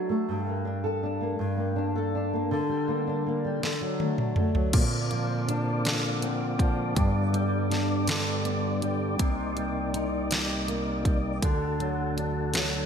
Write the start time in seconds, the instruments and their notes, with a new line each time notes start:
Already playing: nylon-string guitar F#3 D4 F#4
0.09 nylon-string guitar A3
0.29 nylon-string guitar G2
0.47 nylon-string guitar A#3
0.65 nylon-string guitar D4
0.84 nylon-string guitar A4
1.03 nylon-string guitar D4
1.21 nylon-string guitar A#3
1.39 nylon-string guitar G2
1.57 nylon-string guitar A#3
1.76 nylon-string guitar D4
1.96 nylon-string guitar A4
2.15 nylon-string guitar D4
2.33 nylon-string guitar A#3
2.51 nylon-string guitar D3
2.69 nylon-string guitar G3
2.88 nylon-string guitar A#3
3.07 nylon-string guitar D4
3.26 nylon-string guitar A#3
3.45 nylon-string guitar G3
3.63 nylon-string guitar D3, snare
3.81 nylon-string guitar F#3
4.00 nylon-string guitar A3, high tom
4.18 nylon-string guitar D4, mid tom
4.36 nylon-string guitar A3, mid tom
4.55 nylon-string guitar F#3, floor tom
4.73 tonewheel organ A#2 A#3 C4 F4 D5, nylon-string guitar A#2, kick, closed hi-hat, crash
5.11 nylon-string guitar F3, closed hi-hat
5.47 nylon-string guitar D4, closed hi-hat
5.85 nylon-string guitar D3, snare, closed hi-hat
6.21 nylon-string guitar C4, closed hi-hat
6.58 nylon-string guitar F3, kick, closed hi-hat
6.95 nylon-string guitar G2, tonewheel organ G2 G3 B3 D4 D5, kick, closed hi-hat
7.33 nylon-string guitar G3, closed hi-hat
7.70 nylon-string guitar D4, snare, closed hi-hat
8.07 nylon-string guitar D3, snare, closed hi-hat
8.45 nylon-string guitar B3, closed hi-hat
8.82 nylon-string guitar G3, closed hi-hat
9.19 tonewheel organ C2 C3 A#3 D#4, nylon-string guitar C3, kick, closed hi-hat
9.57 nylon-string guitar G3, closed hi-hat
9.93 nylon-string guitar D#4, closed hi-hat
10.31 nylon-string guitar G3, snare, closed hi-hat
10.68 nylon-string guitar A#3, closed hi-hat
11.05 nylon-string guitar G3, kick, closed hi-hat
11.42 tonewheel organ D2 D3 A3 F#4 A4, nylon-string guitar D3, kick, closed hi-hat
11.79 nylon-string guitar F#3, closed hi-hat
12.17 nylon-string guitar D4, closed hi-hat
12.53 nylon-string guitar F#3, snare, closed hi-hat